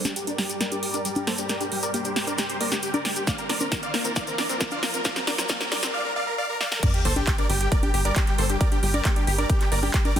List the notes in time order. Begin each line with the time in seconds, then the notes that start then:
Already playing: G3 G4 A#4 D5, riser
0.05 D4 G4, snare, high conga, maracas
0.16 G4, closed hi-hat, maracas
0.27 D4 A#4 D5, closed hi-hat, maracas
0.38 G3 G4, snare, open hi-hat
0.49 G4, closed hi-hat, maracas
0.61 A#3 A#4 D5, snare, closed hi-hat, maracas
0.72 D4 G4, closed hi-hat, maracas
0.83 G4, open hi-hat
0.94 D4 A#4 D5, closed hi-hat, maracas
1.05 G3 G4, closed hi-hat, maracas
1.15 G4, closed hi-hat, high conga, maracas
1.27 A#3 A4 C5, snare, open hi-hat
1.38 D4 G4, closed hi-hat, maracas
1.49 G4 A#4 C5 D5, snare, closed hi-hat, maracas
1.61 D4 G4, closed hi-hat, maracas
1.72 G3 G4, open hi-hat
1.83 A#4 D5, closed hi-hat, maracas
1.94 A#3 G4, closed hi-hat, maracas
2.05 D4 G4, closed hi-hat, maracas
2.16 G4, snare, open hi-hat
2.27 D4 A#4 D5, closed hi-hat, maracas
2.38 G3 G4, snare, closed hi-hat, maracas
2.49 G4, closed hi-hat, maracas
2.61 A#3 A#4 D5, open hi-hat
2.72 D4 G4, snare, closed hi-hat, maracas
2.83 G4, closed hi-hat, maracas
2.94 D4 A#4 D5, closed hi-hat, high conga, maracas
3.05 G3 G4, snare, open hi-hat
3.16 G4, closed hi-hat, maracas
3.27 A#3 F4 C5 D5 F5, kick, snare, closed hi-hat, maracas
3.38 C4 A#4, closed hi-hat, maracas
3.49 D4 A#4 D5, snare, open hi-hat
3.60 C4 A#4, high conga, maracas
3.72 F3 A#4, kick, snare, closed hi-hat, maracas
3.83 D5 F5, closed hi-hat, maracas
3.94 A#3 A#4, snare, open hi-hat
4.05 C4 A#4, closed hi-hat, maracas
4.16 A#3 D5 F5, kick, snare, closed hi-hat, maracas
4.27 C4 A#4, closed hi-hat, maracas
4.38 D4 A#4 D5, snare, open hi-hat
4.49 C4 A#4, closed hi-hat, maracas
4.61 F3 A#4, kick, snare, closed hi-hat, maracas
4.71 D5 F5, closed hi-hat, high conga, maracas
4.83 A#3 A#4, snare, open hi-hat
4.94 C4 A#4, closed hi-hat, maracas
5.05 A#3 D5 F5, kick, snare, closed hi-hat, maracas
5.16 C4 A#4, snare, closed hi-hat, maracas
5.27 D4 A#4 D5, snare, open hi-hat
5.38 C4 A#4, snare, closed hi-hat, maracas
5.48 A#3 D5 F5, kick, snare, closed hi-hat, maracas
5.61 C4 A#4, snare, closed hi-hat, maracas
5.72 D4 A#4 D5, snare, open hi-hat
5.83 C4 A#4, snare, closed hi-hat, maracas
5.94 D5 F5
6.05 A#4
6.16 D5 F5
6.27 A#4
6.38 D5 F5
6.49 A#4
6.60 D5 F5, snare
6.72 A#4, snare
6.83 G3 G4 A#4 D5, kick, closed hi-hat, crash, sub drop
6.94 G4, closed hi-hat
7.05 G1 A#3 A4 C5, open hi-hat
7.16 D4 G4, closed hi-hat, high conga
7.27 G4, kick, clap, closed hi-hat
7.38 D4 A#4 D5, closed hi-hat
7.49 G1 G3 G4, open hi-hat
7.61 G4, closed hi-hat
7.72 A#3 A#4 D5, kick, closed hi-hat
7.83 D4 G4, closed hi-hat, high conga
7.94 G1 G4, open hi-hat
8.05 D4 A#4 D5, closed hi-hat
8.16 G3 G4, kick, clap, closed hi-hat
8.27 G4, clap, closed hi-hat
8.38 G1 A#3 A4 C5, open hi-hat
8.49 D4 G4, closed hi-hat
8.61 G4 A#4 D5, kick, closed hi-hat
8.72 D4 G4, closed hi-hat
8.83 G1 G3 G4, open hi-hat
8.94 A#4 D5, closed hi-hat, high conga
9.05 A#3 G4, kick, clap, closed hi-hat
9.16 D4 G4, closed hi-hat
9.27 G1 G4, open hi-hat
9.38 D4 A#4 D5, closed hi-hat
9.49 G3 G4, kick, closed hi-hat
9.61 G4, clap, closed hi-hat
9.72 G1 A#3 A#4 D5, open hi-hat
9.83 D4 G4, open hi-hat, high conga
9.94 G4, kick, clap, closed hi-hat
10.05 D4 A#4 D5, closed hi-hat, high conga
10.16 G1 G3 G4, open hi-hat, high conga